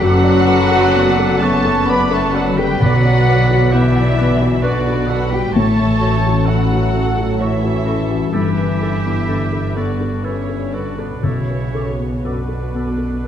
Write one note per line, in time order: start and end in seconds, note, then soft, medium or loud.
0.00 2.76 F#1 medium
0.00 2.76 F#2 medium
0.00 2.84 F#2 medium
0.00 1.40 F#3 loud
0.00 0.63 B3 medium
0.00 2.40 D4 medium
0.00 1.40 F#4 loud
0.00 0.94 A4 medium
0.00 0.47 A4 medium
0.00 1.44 A4 loud
0.00 1.56 B4 medium
0.00 2.77 B4 medium
0.00 1.41 F#5 loud
0.00 2.55 D6 medium
0.24 0.61 D5 medium
0.33 4.23 A3 medium
0.46 0.84 B4 medium
0.46 0.94 B4 medium
0.64 2.18 B3 medium
0.71 1.09 A4 medium
0.95 1.32 B3 medium
0.95 2.84 A4 medium
0.95 1.42 D5 medium
1.19 1.56 A4 medium
1.28 5.18 F#5 medium
1.40 1.71 A3 medium
1.40 1.79 B3 medium
1.40 1.88 C#4 medium
1.40 1.88 A4 medium
1.40 1.90 C#5 medium
1.40 1.88 A5 loud
1.58 4.32 B4 medium
1.65 2.02 A4 medium
1.86 2.09 B3 loud
1.86 2.10 B4 loud
1.86 2.81 B4 medium
1.86 2.25 B4 medium
1.86 2.14 D5 loud
1.86 4.01 D5 medium
1.86 2.11 B5 loud
2.10 2.34 A3 medium
2.10 2.33 A4 medium
2.10 2.48 A4 medium
2.10 2.37 C#5 medium
2.10 2.35 A5 loud
2.20 3.41 B3 medium
2.31 2.56 F#3 medium
2.31 2.57 F#4 medium
2.31 2.59 A4 medium
2.31 2.71 D5 medium
2.31 2.58 F#5 medium
2.51 6.41 D3 medium
2.57 2.80 G3 medium
2.57 2.81 G4 medium
2.57 2.81 A4 medium
2.57 2.80 B4 medium
2.57 2.81 G5 loud
2.80 5.51 B1 medium
2.80 5.50 B2 medium
2.80 5.58 B2 medium
2.80 3.71 F#3 loud
2.80 3.72 F#4 medium
2.80 3.73 B4 loud
2.80 2.98 B4 medium
2.80 3.25 D5 medium
2.80 3.72 F#5 loud
2.80 2.92 D6 medium
3.05 3.41 D5 medium
3.27 3.63 B4 medium
3.27 3.44 B4 medium
3.27 3.71 D5 medium
3.27 3.39 D6 medium
3.43 4.92 B3 medium
3.50 3.86 F#4 medium
3.71 4.62 E3 medium
3.71 4.09 B3 medium
3.71 4.63 E4 medium
3.71 4.35 G4 medium
3.71 3.89 B4 medium
3.71 4.63 D5 medium
3.71 4.63 E5 loud
3.71 3.83 D6 medium
3.96 4.31 F#5 medium
4.02 4.62 D5 medium
4.17 4.55 B3 medium
4.17 4.34 B4 medium
4.17 4.27 D6 medium
4.33 5.58 B4 medium
4.42 4.77 F#4 soft
4.61 5.07 D3 medium
4.61 5.09 D4 medium
4.61 5.09 F#4 medium
4.61 5.52 B4 medium
4.61 4.79 B4 medium
4.61 4.99 B4 medium
4.61 5.08 D5 medium
4.61 5.58 D5 medium
4.61 4.74 D6 medium
4.87 5.23 F#4 soft
4.93 5.58 B3 soft
5.07 5.32 F#3 medium
5.07 5.31 F#4 medium
5.07 5.31 A4 medium
5.07 5.24 B4 medium
5.07 5.45 D5 medium
5.07 5.32 F#5 medium
5.07 5.20 D6 medium
5.24 8.37 F#3 soft
5.30 5.54 G3 medium
5.30 5.55 F#4 medium
5.30 5.54 G4 medium
5.30 5.55 B4 medium
5.34 5.55 G5 medium
5.53 8.30 A1 medium
5.53 8.37 A2 medium
5.53 8.30 A2 medium
5.53 6.44 A3 loud
5.53 5.69 F#4 medium
5.53 6.47 A4 medium
5.53 6.47 C#5 loud
5.53 6.00 C#5 medium
5.53 6.45 A5 loud
5.53 5.63 C#6 medium
5.79 6.15 E5 soft
5.85 8.00 E3 medium
6.00 6.16 F#4 medium
6.00 6.46 C#5 medium
6.00 6.38 C#5 medium
6.00 6.10 C#6 medium
6.16 7.69 C#4 medium
6.26 6.62 F#4 soft
6.45 7.40 F#3 medium
6.45 6.84 C#4 soft
6.45 8.37 F#4 soft
6.45 6.63 F#4 medium
6.45 7.40 F#4 medium
6.45 7.38 A4 medium
6.45 6.93 B4 medium
6.45 7.39 F#5 medium
6.45 6.58 C#6 medium
6.72 7.08 F#4 soft
6.77 7.38 E5 soft
6.93 7.31 C#4 soft
6.93 7.09 F#4 medium
6.93 7.40 A4 medium
6.93 7.05 C#6 medium
7.08 8.37 C#5 soft
7.17 7.54 F#4 soft
7.38 8.33 E3 medium
7.38 8.33 E4 medium
7.38 7.55 F#4 medium
7.38 8.34 A4 medium
7.38 7.77 C#5 soft
7.38 7.87 C#5 medium
7.38 8.36 E5 soft
7.38 8.32 E5 medium
7.38 7.51 C#6 medium
7.63 8.00 F#4 soft
7.70 8.37 C#4 soft
7.85 8.01 F#4 medium
7.85 8.34 A4 medium
7.85 8.24 E5 soft
7.85 7.97 C#6 soft
8.02 8.37 E3 soft
8.11 8.34 F#4 soft
8.33 11.20 G1 medium
8.33 11.27 G2 medium
8.33 11.20 G2 medium
8.33 9.73 E3 medium
8.33 9.73 E4 medium
8.33 9.78 G4 medium
8.33 8.49 A4 medium
8.33 8.80 B4 medium
8.33 9.73 E5 medium
8.33 8.44 B5 medium
8.58 8.95 B4 soft
8.64 10.89 D3 soft
8.80 11.24 G3 medium
8.80 8.97 A4 soft
8.80 9.19 A4 soft
8.80 8.91 B5 soft
8.97 10.56 B3 soft
9.05 9.43 B3 soft
9.28 9.67 D3 soft
9.28 9.44 A4 soft
9.28 9.91 A4 soft
9.28 9.39 B5 soft
9.53 9.91 A4 soft
9.61 10.24 B4 soft
9.75 10.10 D3 medium
9.75 10.14 B3 soft
9.75 10.24 D4 medium
9.75 10.25 F#4 medium
9.75 9.92 A4 soft
9.75 10.25 D5 medium
9.75 9.87 B5 soft
9.93 12.23 A4 soft
10.01 10.39 A4 soft
10.23 10.72 C#4 soft
10.23 10.74 C#4 medium
10.23 10.75 E4 soft
10.23 10.39 A4 soft
10.23 10.63 B4 soft
10.23 12.56 B4 soft
10.23 10.73 C#5 medium
10.23 10.36 B5 soft
10.49 10.88 A4 soft
10.57 11.90 B3 soft
10.72 10.99 D3 soft
10.72 10.97 D4 soft
10.72 11.00 F#4 soft
10.72 10.89 A4 soft
10.72 11.13 B4 soft
10.72 10.98 D5 medium
10.72 10.85 B5 soft
10.90 11.28 D3 soft
10.98 11.23 B2 soft
10.98 11.23 B3 soft
10.98 11.25 D4 soft
10.98 11.23 A4 soft
10.98 11.24 B4 medium
11.22 13.28 B1 soft
11.22 13.28 B2 soft
11.22 12.25 C#3 medium
11.22 12.22 C#4 medium
11.22 11.94 E4 medium
11.22 13.28 F#4 soft
11.22 11.38 A4 soft
11.22 12.24 C#5 medium
11.22 11.35 D6 soft
11.49 11.89 B4 soft
11.58 13.28 F#3 soft
11.74 12.14 A4 soft
11.74 11.91 A4 soft
11.74 11.86 D6 soft
11.91 13.28 B3 soft
11.98 12.39 B3 soft
12.23 12.64 F#2 soft
12.23 13.28 B2 soft
12.23 13.28 B3 soft
12.23 13.28 D4 soft
12.23 12.40 A4 soft
12.23 12.90 A4 soft
12.23 13.28 B4 soft
12.23 12.36 D6 soft
12.48 12.89 A4 soft
12.57 13.24 B4 soft
12.74 13.14 B3 soft
12.74 12.91 A4 soft
12.74 12.88 D6 soft
12.91 13.28 A4 soft
12.98 13.28 A4 soft
13.24 13.28 A4 soft
13.24 13.28 B4 soft